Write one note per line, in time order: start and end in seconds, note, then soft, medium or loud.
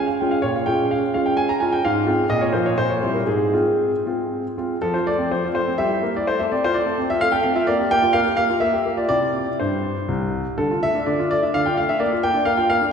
0.07 0.19 F5 soft
0.21 0.38 G#3 soft
0.21 0.38 C#4 soft
0.21 0.39 F4 soft
0.21 0.32 G5 medium
0.31 0.43 F5 medium
0.42 0.67 A#2 soft
0.42 0.55 C#5 medium
0.56 0.68 F5 medium
0.66 1.01 G#3 soft
0.66 1.02 C#4 soft
0.66 1.02 F4 soft
0.66 0.91 G5 medium
0.91 1.13 F5 medium
1.14 1.48 G#3 soft
1.14 1.49 C#4 soft
1.14 1.49 F4 soft
1.14 1.26 F5 medium
1.26 1.38 G5 medium
1.37 1.49 G#5 medium
1.49 1.61 A#5 medium
1.60 1.78 G#3 soft
1.60 1.78 C#4 soft
1.60 1.78 F4 soft
1.60 1.72 G#5 medium
1.72 1.84 G5 medium
1.85 2.07 G#2 medium
1.85 2.27 F5 medium
2.07 2.24 G#3 soft
2.07 2.24 C4 soft
2.07 2.24 F4 medium
2.29 2.53 A#2 medium
2.29 2.42 D#5 medium
2.41 2.54 C#5 medium
2.53 2.71 F3 soft
2.53 2.72 A#3 soft
2.53 2.72 F4 soft
2.53 2.66 C5 medium
2.66 2.78 C#5 medium
2.78 3.03 A#2 medium
2.78 2.91 C5 medium
2.90 3.03 C#5 medium
3.01 3.21 G3 soft
3.01 3.21 C4 soft
3.01 3.21 E4 soft
3.01 3.15 C5 medium
3.14 3.28 A#4 soft
3.27 3.53 G#2 soft
3.27 4.56 G#4 medium
3.53 3.90 G#3 soft
3.53 3.91 C4 soft
3.53 3.91 F4 soft
4.06 4.43 G#3 soft
4.06 4.43 C4 soft
4.06 4.43 F4 soft
4.58 4.76 G#3 soft
4.58 4.76 C4 soft
4.58 4.76 F4 soft
4.82 4.94 F3 medium
4.82 4.94 A4 medium
4.94 5.08 F4 soft
4.94 5.07 C5 medium
5.07 5.20 A3 soft
5.07 5.29 D5 medium
5.18 5.32 C4 soft
5.31 5.44 F3 soft
5.31 5.46 C5 medium
5.45 5.57 F4 soft
5.55 5.68 A3 soft
5.55 5.77 C5 medium
5.67 5.80 C4 soft
5.78 5.91 G3 medium
5.78 6.11 E5 medium
5.90 6.03 E4 soft
6.03 6.16 A#3 soft
6.15 6.27 E4 soft
6.15 6.28 D5 medium
6.27 6.39 A3 medium
6.27 6.39 C5 medium
6.39 6.52 A4 soft
6.39 6.51 E5 medium
6.52 6.64 C4 medium
6.52 6.63 D5 medium
6.64 6.76 F4 soft
6.64 6.75 C5 medium
6.74 6.86 A3 medium
6.74 7.10 D5 medium
6.86 6.99 A4 soft
6.98 7.10 C4 soft
7.10 7.22 F4 soft
7.10 7.22 E5 medium
7.21 7.33 A3 medium
7.21 7.33 F5 loud
7.32 7.45 A4 medium
7.32 7.44 G5 medium
7.43 7.57 C4 medium
7.43 7.56 F5 medium
7.55 7.68 F4 medium
7.55 7.68 E5 medium
7.67 7.80 A#3 medium
7.67 7.89 D5 medium
7.80 7.93 G4 medium
7.91 8.04 A#3 medium
7.91 8.15 G5 loud
8.02 8.16 F4 medium
8.13 8.26 A#3 medium
8.13 8.35 F5 medium
8.26 8.39 G4 soft
8.37 8.51 A#3 medium
8.37 8.51 F5 medium
8.50 8.63 F4 soft
8.60 8.73 A#3 medium
8.60 8.94 E5 medium
8.73 8.86 G4 medium
8.85 8.99 A#3 soft
8.97 9.10 F4 soft
8.97 9.07 D5 medium
9.09 9.44 C3 medium
9.09 9.49 E4 soft
9.09 9.49 G4 soft
9.09 9.59 D5 medium
9.60 9.94 G2 medium
9.60 10.08 C5 medium
10.08 10.43 C2 medium
10.58 10.70 D3 medium
10.58 10.80 A4 medium
10.71 10.83 F4 soft
10.83 10.95 A3 medium
10.83 10.97 E5 medium
10.95 11.07 D4 soft
11.06 11.18 D3 medium
11.06 11.28 D5 medium
11.19 11.31 F4 medium
11.31 11.43 A3 soft
11.31 11.42 D5 medium
11.42 11.55 D4 soft
11.42 11.54 E5 medium
11.54 11.66 D3 soft
11.54 11.66 F5 medium
11.66 11.78 F4 medium
11.66 11.77 G5 medium
11.77 11.90 A3 soft
11.77 11.89 F5 medium
11.89 12.00 D4 soft
11.89 12.00 E5 medium
12.00 12.11 A#3 medium
12.00 12.14 D5 medium
12.12 12.24 F4 soft
12.23 12.36 A#3 medium
12.23 12.44 G5 medium
12.34 12.47 D4 soft
12.45 12.57 A#3 medium
12.45 12.57 F5 medium
12.57 12.70 F4 soft
12.57 12.69 G5 medium
12.70 12.82 A#3 medium
12.70 12.83 F5 medium
12.82 12.92 D4 soft